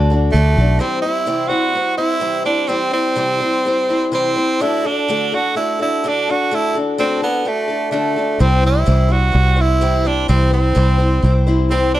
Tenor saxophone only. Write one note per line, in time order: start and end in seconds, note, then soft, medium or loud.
0.32 0.82 A3 medium
0.80 1.01 C4 medium
1.02 1.49 E4 medium
1.48 1.97 F#4 medium
1.97 2.43 E4 medium
2.46 2.69 D4 medium
2.68 2.93 C4 medium
2.93 4.09 C4 medium
4.14 4.63 C4 medium
4.62 4.88 E4 medium
4.87 5.36 D4 medium
5.34 5.56 F#4 medium
5.57 5.78 E4 medium
5.82 6.10 E4 medium
6.09 6.32 D4 medium
6.31 6.56 F#4 medium
6.55 6.76 E4 medium
6.99 7.21 C4 medium
7.23 7.49 B3 medium
7.48 7.91 A3 medium
7.92 8.42 A3 medium
8.41 8.64 C4 medium
8.66 9.14 E4 medium
9.12 9.62 F#4 medium
9.61 10.09 E4 medium
10.07 10.29 D4 medium
10.29 10.51 C4 medium
10.54 11.41 C4 medium
11.71 11.93 C4 medium
11.94 12.00 D4 medium